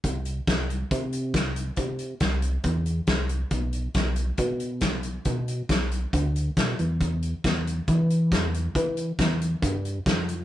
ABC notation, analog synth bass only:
X:1
M:4/4
L:1/8
Q:1/4=138
K:Ephr
V:1 name="Analog synth bass" clef=bass
C,,2 C,,2 C,2 C,,2 | C,2 C,,2 E,,2 C,,2 | B,,,2 B,,,2 B,,2 B,,,2 | B,,2 B,,,2 D,,2 B,, E,,- |
E,,2 E,,2 E,2 E,,2 | E,2 E,,2 G,,2 F,,2 |]